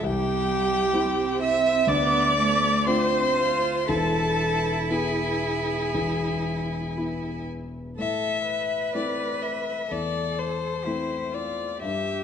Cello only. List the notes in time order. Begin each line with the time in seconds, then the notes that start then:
0.05 G3
0.96 C4
1.89 B3
2.38 A3
2.88 C4
3.36 F4
3.87 E4
7.98 A4
8.46 B4
9.90 A4
10.86 E4
11.32 F4
11.79 G4